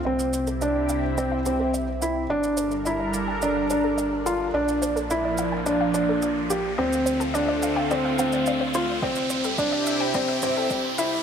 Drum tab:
SH |-xxxx-x-x-x-x-x-|-xxxx-x-x-x-x-x-|-xxxx-x-x-x-x-x-|-xxxx-x-x-xxx-x-|
T2 |----------------|----------------|----------------|----------------|
BD |----------------|----------------|----------------|----------------|

SH |-xxxx-x-x-x-x-x-|
T2 |----------o-----|
BD |o---o---o---o---|